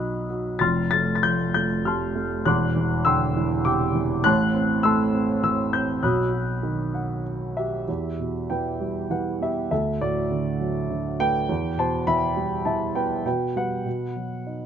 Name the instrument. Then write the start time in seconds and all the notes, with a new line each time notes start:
grand piano
Already playing: B1 B2 D#4 F#4 B5 D#6 F#6
0.30 F#4
0.59 F1 F2 C6 F6 A6
0.91 A3 A6
1.15 A6
1.23 F3 G6
1.54 A3 G6
1.85 C3 A5 C6 F6
2.15 A3
2.45 E1 E2 C6 D6 F#6
2.76 E3
3.05 D3 G5 C6 E6
3.37 E3
3.65 C3 G5 D6
3.95 E3
4.24 A1 A2 A5 C6 F#6
4.54 C4
4.83 A3 A5 C6 E6
5.14 C4
5.43 E3 E6
5.73 C4 G6
6.03 B1 B2 B5 D#6 F#6
6.33 F#4
6.63 D#3
6.94 F#5
7.57 G4 E5
7.88 E2
8.19 B2
8.50 E3 B4 G5
8.81 G3
9.10 E3 B4 F#5
9.41 B3 G4 E5
9.71 D2 A4 E5
10.01 A2 F#4 D5
10.31 D3
10.60 F#3
10.90 D3
11.20 A3 B4 G5
11.49 E2
11.78 B2 C5 A5
12.07 E3 E5 B5
12.37 G3
12.65 E3 E5 A5
12.95 B3 B4 G5
13.25 B2 B4 G5
13.56 G3 B4 F#5
13.85 B2
14.16 F#3
14.47 D#4